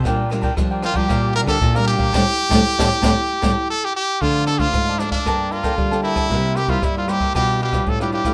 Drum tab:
RD |x-xxx-xxx-xxx-xx|----------------|x-xxx-xxx-xxx-xx|x-xxx-xxx-xxx-xx|
SD |r-r-r-r-r--r-r--|o--o-o-o--o-----|--r-r-r-r--r-r-r|--r-r-r-r--r-r-r|
BD |o--oo--oo--oo--o|o--o-o-o--o-----|o--oo--oo--oo--o|o--oo--oo--oo--o|